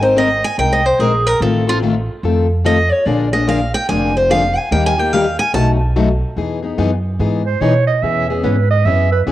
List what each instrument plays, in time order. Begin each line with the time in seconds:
Already playing: upright bass G#1
0.01 steel-string acoustic guitar C4 D#4 A#4 C5
0.16 steel-string acoustic guitar G#3 C4 D#4 A#4 D#5
0.44 steel-string acoustic guitar G#5
0.58 upright bass C2, steel-string acoustic guitar G#3 C4 D#4 A#4 G5
0.72 steel-string acoustic guitar D#5
0.86 steel-string acoustic guitar C5
0.99 upright bass A#1, steel-string acoustic guitar G#3 C4 D#4 G#4 A#4
1.26 steel-string acoustic guitar A#4
1.40 upright bass A1, steel-string acoustic guitar D#3 A3 C4 F4 A4
1.67 steel-string acoustic guitar C4 F4 A4
1.83 steel-string acoustic guitar D#3 A3 C4 F4 A4
2.23 upright bass F2, steel-string acoustic guitar D#3 A3 C4 F4 A4
2.64 steel-string acoustic guitar D#3 A3 C4 F4 A4 D#5
2.92 steel-string acoustic guitar C#5
3.06 upright bass A#1, steel-string acoustic guitar D3 F3 A#3 D4 G#4 D5
3.33 steel-string acoustic guitar A#3 D4 G#4 D#5
3.47 steel-string acoustic guitar D3 F3 A#3 D4 G#4 F5
3.74 steel-string acoustic guitar G5
3.89 upright bass F1, steel-string acoustic guitar D3 F3 A#3 D4 G#4 G#5
4.17 steel-string acoustic guitar C5
4.30 steel-string acoustic guitar D3 F3 A#3 D4 G#4 F5
4.57 steel-string acoustic guitar G#5
4.71 upright bass D#2, steel-string acoustic guitar D#3 G3 A#3 D#4 G4 G5
4.86 steel-string acoustic guitar G#5
4.98 steel-string acoustic guitar A#3 D#4 G4 G5
5.13 steel-string acoustic guitar D#3 G3 A#3 D#4 G4 F5
5.39 steel-string acoustic guitar G#5
5.54 upright bass B1, steel-string acoustic guitar B2 F#3 A3 D#4 F#4 A5
5.96 steel-string acoustic guitar B2 F#3 A3 D#4 F#4
6.36 upright bass E2, steel-string acoustic guitar E3 B3 D#4 G#4
6.63 steel-string acoustic guitar B3 D#4 G#4
6.78 upright bass F#2, steel-string acoustic guitar E3 B3 D#4 G#4
7.19 upright bass G#2, steel-string acoustic guitar E3 B3 D#4 G#4
7.46 clarinet C5
7.61 upright bass B2, steel-string acoustic guitar E3 B3 D#4 G#4, clarinet C#5
7.87 clarinet D#5
8.02 upright bass E2, steel-string acoustic guitar E3 B3 C#4 G#4, clarinet E5
8.30 steel-string acoustic guitar B3 C#4 G#4, clarinet G#4
8.43 upright bass G#2, steel-string acoustic guitar E3 B3 C#4 G#4, clarinet B4
8.71 clarinet D#5
8.85 upright bass F#2, steel-string acoustic guitar E3 B3 C#4 G#4, clarinet E5
9.12 clarinet B4
9.27 upright bass E2, steel-string acoustic guitar E3 B3 C#4 G#4